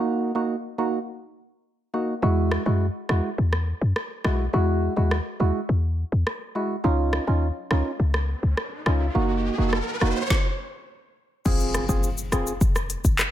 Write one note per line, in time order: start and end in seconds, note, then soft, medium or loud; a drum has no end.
0.00 0.32 A#3 medium
0.00 0.32 D#4 medium
0.00 0.32 F#4 loud
0.35 0.55 A#3 medium
0.35 0.56 D#4 medium
0.35 0.56 F#4 medium
0.78 0.99 A#3 medium
0.78 0.99 D#4 medium
0.78 0.99 F#4 medium
1.94 2.14 A#3 medium
1.94 2.14 D#4 medium
1.94 2.14 F#4 medium
2.22 2.58 E2 loud
2.22 2.62 G#3 medium
2.22 2.63 E4 medium
2.22 2.63 F#4 loud
2.52 cross-stick medium
2.66 2.90 F#2 medium
2.66 2.86 G#3 medium
2.66 2.86 E4 medium
2.66 2.87 F#4 medium
3.09 3.21 E2 medium
3.09 3.30 G#3 medium
3.09 3.30 E4 medium
3.09 3.30 F#4 medium
3.09 cross-stick medium
3.38 3.73 E2 loud
3.53 cross-stick medium
3.81 3.93 F#2 medium
3.96 cross-stick medium
4.24 4.48 B1 medium
4.24 4.45 G#3 medium
4.24 4.45 E4 medium
4.24 4.45 F#4 medium
4.24 cross-stick loud
4.53 4.89 E2 loud
4.53 4.93 G#3 medium
4.53 4.93 E4 medium
4.53 4.93 F#4 loud
4.96 5.20 D#2 medium
4.96 5.17 G#3 medium
4.96 5.17 E4 medium
4.96 5.17 F#4 medium
5.11 cross-stick medium
5.40 5.52 D#2 medium
5.40 5.60 G#3 medium
5.40 5.60 E4 medium
5.40 5.61 F#4 medium
5.69 6.04 E2 loud
6.12 6.24 E2 medium
6.27 cross-stick medium
6.55 6.76 G#3 medium
6.55 6.76 E4 medium
6.55 6.76 F#4 medium
6.84 7.20 C#2 loud
6.84 7.24 C#4 medium
6.84 7.24 D#4 medium
6.84 7.24 F4 loud
6.84 riser medium
7.13 cross-stick medium
7.27 7.51 D#2 medium
7.27 7.48 C#4 medium
7.27 7.48 D#4 medium
7.27 7.48 F4 medium
7.71 7.83 C#2 medium
7.71 7.91 C#4 medium
7.71 7.91 D#4 medium
7.71 7.91 F4 medium
7.71 cross-stick medium
8.00 8.35 C#2 loud
8.14 cross-stick medium
8.43 8.55 C#2 medium
8.57 cross-stick medium
8.86 9.10 C#2 medium
8.86 9.06 C#4 medium
8.86 9.07 D#4 medium
8.86 9.07 F4 medium
8.86 cross-stick medium
9.15 9.50 F#1 loud
9.15 9.55 A#3 medium
9.15 9.55 D#4 medium
9.15 9.55 F#4 loud
9.58 9.82 F1 medium
9.58 9.78 A#3 medium
9.58 9.79 D#4 medium
9.58 9.79 F#4 medium
9.73 cross-stick medium
10.01 10.13 F1 loud
10.01 10.22 A#3 medium
10.01 10.22 D#4 medium
10.01 10.22 F#4 medium
10.01 cross-stick medium
10.30 kick loud
10.30 snare medium
11.45 11.81 F1 loud
11.45 11.85 C4 loud
11.45 11.86 F4 medium
11.45 11.86 G#4 loud
11.45 kick loud
11.45 crash medium
11.45 impact medium
11.45 shaker medium
11.60 shaker medium
11.74 cross-stick medium
11.74 closed hi-hat medium
11.74 shaker soft
11.89 12.13 F#1 medium
11.89 12.09 C4 medium
11.89 12.09 F4 medium
11.89 12.09 G#4 medium
11.89 kick loud
11.89 shaker medium
12.03 shaker medium
12.18 shaker medium
12.32 12.44 F1 medium
12.32 12.53 C4 medium
12.32 12.53 F4 medium
12.32 12.53 G#4 medium
12.32 cross-stick loud
12.32 closed hi-hat medium
12.32 shaker medium
12.47 shaker medium
12.61 12.96 F1 loud
12.61 kick loud
12.61 shaker medium
12.76 cross-stick medium
12.76 shaker medium
12.90 closed hi-hat medium
12.90 shaker soft
13.05 13.16 G#1 medium
13.05 kick medium
13.05 shaker medium
13.19 cross-stick medium
13.19 clap medium
13.19 shaker medium